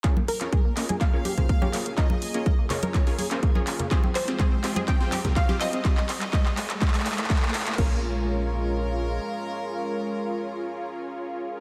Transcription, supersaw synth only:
X:1
M:4/4
L:1/16
Q:1/4=124
K:Bbdor
V:1 name="Supersaw synth"
[DFABd] z2 [DFABd] z2 [DFABe]3 [DFABd] z [DFABc] z [DFABd]3 | [DFABd] z2 [DFABd] z2 [DFABe]3 [DFABd] z [DFABc] z [DFABd]3 | [CFGAc] z2 [CFGAc] z2 [CFGAe]3 [CFGAc] z [CFGAB] z [CFGAc]3 | z16 |
[DFABd]16- | [DFABd]16 |]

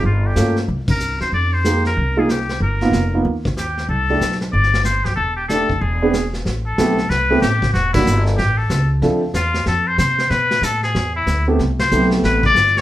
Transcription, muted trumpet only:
X:1
M:4/4
L:1/8
Q:"Swing" 1/4=187
K:Gmix
V:1 name="Muted trumpet"
F G2 z2 _B2 c | d c2 _B2 _A G2 | ^A4 z2 G2 | A3 z d2 c G |
A G A2 ^G3 z | [K:Am] z A3 B2 G2 | ^F E2 z G A2 z | z2 F2 A c c2 |
B2 A ^G2 E2 z | z c2 z B d2 ^c |]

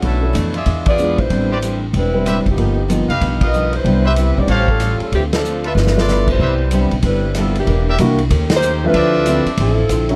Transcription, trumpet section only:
X:1
M:4/4
L:1/8
Q:"Swing" 1/4=188
K:C
V:1 name="Trumpet section"
[AB^ce]3 [F_Ade]3 z2 | z [GBcd] z4 [GBce] z | z3 [GB^df]3 z2 | z [GBce] z2 [GA^c^e]3 z |
z3 [FABe] z4 | [GBce] z6 z | z [G_Bde] z6 | [CDde]4- [CDde] z3 |]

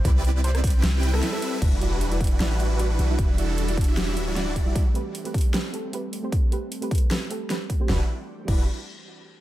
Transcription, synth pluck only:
X:1
M:4/4
L:1/16
Q:"Swing 16ths" 1/4=153
K:Em
V:1 name="Synth pluck"
z16 | z2 [G,EFd] z2 [G,EFd]3 [G,EFd] z [G,EFB]2 [G,EFd] z2 [G,EFe] | z2 [G,EFd] z2 [G,EFd]3 [G,EFd] z [G,EFB]2 [G,EFd] z2 [G,EFe] | z2 [A,CGB] z2 [A,CGB]3 [A,CGB] z [A,CGA]2 [A,CGB] z2 [A,CGc] |
z2 [A,CGB] z2 [A,CGB]3 [A,CGB] z [A,CGA]2 [A,CGB] z2 [A,CGc] | [G,EFd] z4 z [G,EFd]2 z8 |]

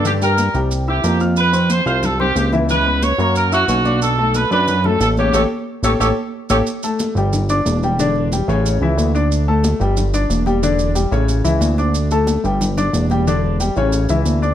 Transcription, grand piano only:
X:1
M:4/4
L:1/8
Q:1/4=182
K:Glyd
V:1 name="Grand piano"
[D,Dd] [G,Gg]2 [G,Gg]2 [Eee'] [_B,_B_b] [=F=f=f']- | [=F=f=f'] [=C=c=c']2 [Fff']2 [Ccc']2 [E,Ee] | [E,Ee] [B,Bb]2 [_B,_B_b]2 [Eee'] [Ccc'] [Ddd']- | [Ddd'] [A,Aa]2 [Ddd']2 [A,Aa]2 [C,Cc] |
[GAc] z2 [GAc] [GAc] z2 [GAc] | z [A,Aa]2 [G,Gg]2 [Ddd']2 [G,Gg] | [D,Dd]2 [G,Gg] [C,Cc]2 [E,Ee]2 [Ddd']- | [Ddd'] [A,Aa]2 [G,Gg]2 [Ddd']2 [G,Gg] |
[D,Dd]2 [G,Gg] [C,Cc]2 [E,Ee]2 [Ddd']- | [Ddd'] [A,Aa]2 [G,Gg]2 [Ddd']2 [G,Gg] | [D,Dd]2 [G,Gg] [C,Cc]2 [E,Ee]2 [Ddd'] |]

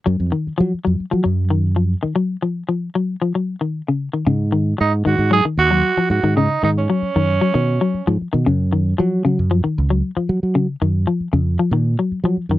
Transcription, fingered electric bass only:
X:1
M:4/4
L:1/16
Q:1/4=114
K:F#
V:1 name="Fingered electric bass" clef=bass
F,, E,, z2 F, z E,, z F, F,,6 z | z16 | G,,4 G,,2 G,, G,,2 z D,,2 z2 G,, G,,- | G,, z G,,2 z2 F,,2 z B,,2 z2 G,, z B,, |
F,,4 F,2 F, F,,2 z C,,2 z2 F, F,- | F, z F,,2 z2 E,,2 z A,,2 z2 F, z F,, |]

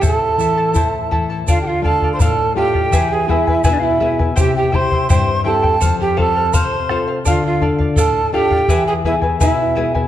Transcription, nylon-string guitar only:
X:1
M:2/4
L:1/8
Q:1/4=83
K:Ddor
V:1 name="Nylon-string guitar"
A,, E, E E, | D, [A,DF] A,, [A,DF] | E, [B,E^G] B,, [B,EG] | C, [CEG] G,, [CEG] |
F,, [CFA] C, [CFA] | D, [DFA] A,, [DFA] | E, [B,E^G] B,, [B,EG] |]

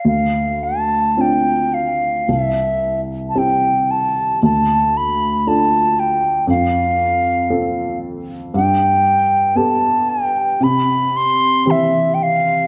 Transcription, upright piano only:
X:1
M:4/4
L:1/8
Q:1/4=57
K:Ddor
V:1 name="Upright piano"
D,,2 [CDF]2 C,,2 [CEG]2 | D,,2 [DFA]2 F,,2 [CFA]2 | G,,2 [B,GA]2 C,2 [E,CG]2 |]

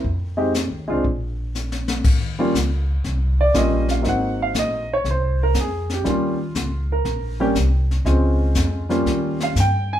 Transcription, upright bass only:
X:1
M:4/4
L:1/8
Q:"Swing" 1/4=120
K:Ebmix
V:1 name="Upright bass" clef=bass
F,,2- (3F,, E,, C,, B,,,4 | E,,2 D,,2 C,,2 B,,,2 | A,,,2 B,,,2 C,,2 F,,2 | E,,2 D,,2 B,,,2 C,,2 |
D,,2 F,,2 E,,2 G,,2 |]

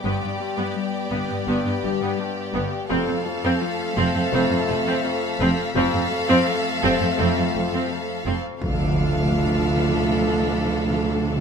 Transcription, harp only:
X:1
M:4/4
L:1/8
Q:1/4=84
K:Ddor
V:1 name="Harp" clef=bass
[G,,G,D] G,, G, G, G,, G, G,, G,, | F,, F,, F, F, F,, F, F,, F,, | F,, F,, F, F, F,, F, F,, F,, | z8 |]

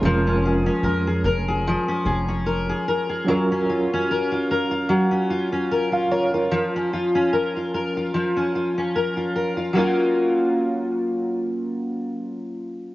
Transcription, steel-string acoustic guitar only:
X:1
M:4/4
L:1/16
Q:"Swing 16ths" 1/4=74
K:F#
V:1 name="Steel-string acoustic guitar"
E, C G C A G A G E, C G C A G A G | F, C E C A E A E F, C E C A E A E | E, C E C A E A E E, C E C A E A E | [F,A,CEA]16 |]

